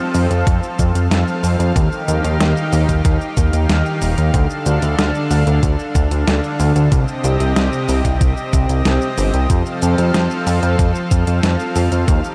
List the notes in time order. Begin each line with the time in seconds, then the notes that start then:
Already playing: F3 C4 A4 F5
0.15 F2, open hi-hat, shaker
0.31 F2, closed hi-hat, shaker
0.47 F2, kick, closed hi-hat, shaker
0.63 shaker
0.79 F2, kick, closed hi-hat, shaker
0.95 F2, closed hi-hat, shaker
1.11 F2, snare, closed hi-hat, shaker
1.28 shaker
1.43 F2, open hi-hat, shaker
1.59 F2, closed hi-hat, shaker
1.76 D#2 D#3 D#4 G4, kick, closed hi-hat, shaker
1.92 shaker
2.08 D#2, closed hi-hat, shaker
2.24 D#2, closed hi-hat, shaker
2.40 D#2, snare, closed hi-hat, shaker
2.57 shaker
2.73 D#2, open hi-hat, shaker
2.89 D#2, kick, closed hi-hat, shaker
3.05 D#2, kick, closed hi-hat, shaker
3.21 shaker
3.37 D#2, kick, closed hi-hat, shaker
3.53 D#2, closed hi-hat, shaker
3.69 D#2, snare, closed hi-hat, shaker
3.86 shaker
4.02 D#1, open hi-hat, shaker
4.18 D#2, closed hi-hat, shaker
4.34 D2 D3 D4 A4, kick, closed hi-hat, shaker
4.50 shaker
4.66 D2, closed hi-hat, shaker
4.82 D2, closed hi-hat, shaker
4.99 D2, snare, closed hi-hat, shaker
5.15 shaker
5.31 D2, open hi-hat, shaker
5.47 D2, closed hi-hat, shaker
5.63 D2, kick, closed hi-hat, shaker
5.79 shaker
5.95 D2, kick, closed hi-hat, shaker
6.11 D2, closed hi-hat, shaker
6.27 D2, snare, closed hi-hat, shaker
6.44 shaker
6.60 D2, open hi-hat, shaker
6.76 D2, closed hi-hat, shaker
6.92 C2 C3 C4 G4 D#5, kick, closed hi-hat, shaker
7.08 shaker
7.24 C2, closed hi-hat, shaker
7.40 C2, closed hi-hat, shaker
7.56 C2, snare, closed hi-hat, shaker
7.73 shaker
7.89 C2, open hi-hat, shaker
8.05 C2, kick, closed hi-hat, shaker
8.21 C2, kick, closed hi-hat, shaker
8.37 shaker
8.53 C2, kick, closed hi-hat, shaker
8.69 C2, closed hi-hat, shaker
8.85 C2, snare, closed hi-hat, shaker
9.01 shaker
9.18 G1, open hi-hat, shaker
9.34 C2, closed hi-hat, shaker
9.50 F2 F3 A4 F5, kick, closed hi-hat, shaker
9.66 shaker
9.82 F2, closed hi-hat, shaker
9.98 F2, closed hi-hat, shaker
10.14 F2, snare, closed hi-hat, shaker
10.31 shaker
10.47 F2, open hi-hat, shaker
10.63 F2, closed hi-hat, shaker
10.79 F2, kick, closed hi-hat, shaker
10.95 shaker
11.11 F2, kick, closed hi-hat, shaker
11.27 F2, closed hi-hat, shaker
11.43 F2, snare, closed hi-hat, shaker
11.59 shaker
11.76 F2, open hi-hat, shaker
11.92 F2, closed hi-hat, shaker
12.08 D#2 D#3 D#4 G4, kick, closed hi-hat, shaker
12.24 shaker